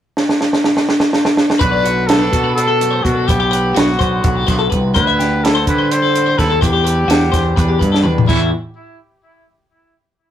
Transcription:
0.17 snare
0.29 snare
0.41 snare
0.53 snare
0.64 snare
0.77 snare
0.89 snare
1.00 snare
1.13 snare
1.25 snare
1.37 snare
1.50 snare
1.59 fingered electric bass B1, clean electric guitar B2 D3 A3 D4 F#4 B4, trumpet B4, kick, closed hi-hat
1.71 clean electric guitar D5
1.84 clean electric guitar F#4, closed hi-hat
2.07 clean electric guitar B3, trumpet A4, snare, closed hi-hat
2.19 clean electric guitar D4 B4
2.32 fingered electric bass B2, clean electric guitar D3 F#4, kick, closed hi-hat
2.44 clean electric guitar B4
2.55 clean electric guitar D4, trumpet A4, closed hi-hat
2.68 clean electric guitar A4
2.80 clean electric guitar F#2 A3, closed hi-hat
2.91 clean electric guitar C5
3.03 fingered electric bass B2, clean electric guitar D4 B4, trumpet F#4, kick, closed hi-hat
3.15 clean electric guitar A4
3.27 fingered electric bass B1, clean electric guitar B2 B3 B4, trumpet G4, kick, closed hi-hat
3.40 clean electric guitar G4
3.51 clean electric guitar B4, closed hi-hat
3.74 fingered electric bass B1, clean electric guitar B3 F#4, trumpet F#4, snare, closed hi-hat
3.99 fingered electric bass B1, clean electric guitar D3 B3 C5, kick, closed hi-hat
4.23 fingered electric bass B1, clean electric guitar A2 B4, kick, closed hi-hat
4.36 clean electric guitar G4
4.47 fingered electric bass B1, clean electric guitar B2 B4, kick, snare, closed hi-hat
4.59 clean electric guitar A4
4.70 fingered electric bass C2, clean electric guitar C3 B4, kick, closed hi-hat
4.94 fingered electric bass D2, clean electric guitar D3 E4 C5, trumpet B4, kick, closed hi-hat
5.07 clean electric guitar E5
5.19 clean electric guitar G4, snare, closed hi-hat
5.44 clean electric guitar E4, trumpet A4, snare, closed hi-hat
5.55 clean electric guitar C5
5.67 fingered electric bass D3, clean electric guitar G3 E4, trumpet B4, kick, closed hi-hat
5.78 clean electric guitar C5
5.91 clean electric guitar E4, trumpet C5, closed hi-hat
6.02 clean electric guitar A4
6.14 clean electric guitar A2 C4, closed hi-hat
6.26 clean electric guitar C5
6.38 fingered electric bass D#2, clean electric guitar E4 B4, trumpet A4, kick, snare, closed hi-hat
6.50 clean electric guitar A4
6.61 fingered electric bass E2, clean electric guitar E2 D4 B4, trumpet G4, kick, closed hi-hat
6.73 clean electric guitar G4
6.84 clean electric guitar B4, closed hi-hat
7.08 fingered electric bass E2, clean electric guitar D4 F#4, snare, closed hi-hat
7.32 fingered electric bass E2, clean electric guitar E3 D4 C5, kick, snare, closed hi-hat
7.56 fingered electric bass E2, clean electric guitar D4 B4, kick, closed hi-hat
7.68 clean electric guitar G4
7.79 fingered electric bass G2, clean electric guitar B2 G3 B4, kick, closed hi-hat
7.92 clean electric guitar A4, snare
8.03 fingered electric bass E2, clean electric guitar D4 B4, mid tom
8.18 floor tom
8.27 clean electric guitar E2 E3 G3 D4 E4 F#4, fingered electric bass E2, trumpet E4, kick, crash

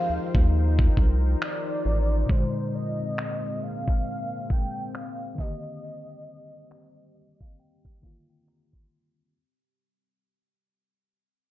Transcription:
Already playing: tine electric piano F3 D#4 G4 G#4 A#4, ambient pad F3 D#4 A#4 C5 G5, soft synth lead F5
0.09 analog synth bass D#2
0.35 analog synth bass D#2, kick
0.79 kick
0.97 analog synth bass C2, kick
1.42 soft synth lead D5, finger snap
1.85 analog synth bass A1
2.26 tine electric piano A#2 G#3, ambient pad G#3 A#3 C4, kick
2.31 tine electric piano D3, soft synth lead C5
2.35 tine electric piano C5
2.75 soft synth lead D#5
3.18 finger snap
3.63 soft synth lead F5
3.88 kick
4.50 soft synth lead G5, kick
4.95 soft synth lead F5, finger snap
5.35 tine electric piano D#3 A#3, ambient pad G3 G4, kick
5.39 tine electric piano D3, soft synth lead D#5
5.43 tine electric piano G4
6.71 finger snap
7.16 tine electric piano D#5
7.41 tine electric piano F5, kick
7.60 tine electric piano G5
7.85 finger snap, kick
8.02 tine electric piano D3 D#3 A#3 F5, kick
8.06 tine electric piano F4
8.30 tine electric piano G5
8.48 tine electric piano A#5, finger snap
8.73 tine electric piano C6, kick

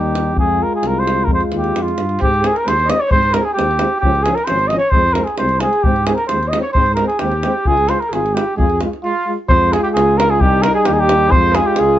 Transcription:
Already playing: tuba D#2, euphonium G3, french horn D#4, flugelhorn G4
0.15 davul high
0.36 tuba F2, euphonium G#3, french horn F4, flugelhorn G#4, davul low
0.63 flugelhorn A#4
0.75 flugelhorn G#4
0.83 tuba C2, davul high
0.87 flugelhorn A#4
0.99 flugelhorn C5
1.07 davul high
1.24 flugelhorn A#4, davul low
1.28 tuba F2, euphonium G#3, french horn F4
1.33 flugelhorn C5
1.40 davul high
1.52 tuba D#2, davul high
1.58 flugelhorn G4
1.64 davul high
1.76 tuba F2, davul high
1.82 flugelhorn F4
1.88 davul high
1.98 tuba G2, davul high
2.09 davul high
2.20 tuba G#2, euphonium G#3, french horn C4, trumpet G4, flugelhorn G4, davul low
2.34 davul high
2.41 euphonium G#3, french horn C4, trumpet G#4, davul high
2.47 flugelhorn G#4
2.53 trumpet A#4, davul high
2.57 flugelhorn A#4
2.64 tuba D#2, euphonium G#3, french horn C4, trumpet C5, flugelhorn C5, davul high
2.80 davul high
2.85 euphonium G#3, french horn C4, trumpet D#5
2.90 flugelhorn D#5, davul high
2.97 trumpet C#5, flugelhorn C#5
3.07 tuba G#2, euphonium G#3, trumpet C5, flugelhorn C5, davul low
3.12 french horn C4
3.23 davul high
3.30 euphonium G#3, trumpet A#4, flugelhorn A#4, davul high
3.35 french horn C4
3.42 trumpet G#4, flugelhorn G#4
3.52 euphonium G#3, trumpet G4, flugelhorn G4
3.58 tuba D#2, french horn C4, davul high
3.71 davul high
3.79 euphonium G#3, french horn C4, davul high
3.97 trumpet G4, flugelhorn G4
4.02 tuba C#2, euphonium F3, french horn C#4, davul low
4.15 davul high
4.21 trumpet G#4, flugelhorn G#4
4.26 euphonium F3, french horn C#4, davul high
4.35 trumpet A#4, flugelhorn A#4, davul high
4.45 euphonium F3, french horn C#4, trumpet C5, flugelhorn C5, davul high
4.50 tuba G#1
4.59 davul high
4.68 euphonium F3, flugelhorn D#5, trumpet D#5, davul high
4.72 french horn C#4
4.78 flugelhorn C#5, trumpet C#5
4.89 flugelhorn C5, trumpet C5, davul low
4.94 tuba F2, euphonium G#3, french horn C4
5.13 euphonium G#3, french horn C4, flugelhorn A#4, trumpet A#4, davul high
5.24 flugelhorn G#4, trumpet G#4, davul high
5.38 tuba C2, euphonium G#3, french horn C4, flugelhorn C5, trumpet C5, davul high
5.49 davul high
5.60 euphonium G#3, french horn C4, flugelhorn G#4, trumpet G#4, davul high
5.73 davul high
5.83 tuba G#2, euphonium G#3, french horn C4, flugelhorn G4, trumpet G4, davul low
5.96 davul high
6.06 euphonium G#3, french horn C4, flugelhorn G#4, trumpet G#4, davul high
6.15 flugelhorn A#4, trumpet A#4, davul high
6.27 euphonium G#3, flugelhorn C5, trumpet C5, davul high
6.32 tuba D#2, french horn C4
6.43 davul high
6.48 euphonium G#3, flugelhorn D#5, trumpet D#5
6.53 french horn C4, davul high
6.61 flugelhorn C#5, trumpet C#5
6.73 tuba G#2, euphonium G#3, flugelhorn C5, trumpet C5, davul low
6.77 french horn C4
6.86 davul high
6.94 flugelhorn A#4, trumpet A#4, davul high
6.99 euphonium G#3, french horn C4
7.07 flugelhorn G#4, trumpet G#4, davul high
7.18 tuba D#2, euphonium G#3, french horn C4, trumpet G4, flugelhorn G4, davul high
7.32 davul high
7.43 euphonium G#3, french horn C4, davul high
7.65 tuba C#2, euphonium G#3, french horn F4, trumpet G#4, flugelhorn G#4, davul low
7.77 davul high
7.88 euphonium G#3, french horn F4, trumpet C5, flugelhorn C5, davul high
7.99 trumpet A#4, flugelhorn A#4, davul high
8.09 tuba G#1, euphonium G#3, french horn F4, trumpet G#4, flugelhorn G#4, davul high
8.26 davul high
8.34 euphonium G#3, french horn F4, trumpet G4, flugelhorn G4, davul high
8.56 tuba F2, euphonium G#3, french horn F4, trumpet G#4, flugelhorn G#4, davul low
8.70 davul high
8.81 euphonium G#3, french horn F4, davul high
8.93 davul high
9.04 euphonium G#3, flugelhorn F4, french horn F4, trumpet F4
9.26 euphonium G#3, french horn F4
9.48 tuba F2, euphonium G#3, french horn F4, flugelhorn C5, trumpet C5, davul low
9.72 trumpet G#4, flugelhorn G#4, davul high
9.83 flugelhorn G4, trumpet G4
9.93 tuba C#2, flugelhorn G#4, trumpet G#4, davul high
10.17 trumpet A#4, flugelhorn A#4, davul high
10.30 flugelhorn G#4, trumpet G#4
10.40 tuba C2, euphonium G3, french horn D#4, flugelhorn G4, trumpet G4, davul low
10.62 flugelhorn A#4, trumpet A#4, davul high
10.74 trumpet G#4, flugelhorn G#4
10.85 tuba D#2, trumpet G4, flugelhorn G4, davul high
10.92 trumpet G#4, flugelhorn G#4
10.99 flugelhorn G4, trumpet G4
11.09 davul high
11.28 trumpet C5, flugelhorn C5, davul low
11.33 tuba F2, euphonium G#3, french horn F4
11.52 trumpet G#4, flugelhorn G#4, davul high
11.65 trumpet G4, flugelhorn G4
11.76 tuba C#2, trumpet G#4, flugelhorn G#4, davul high

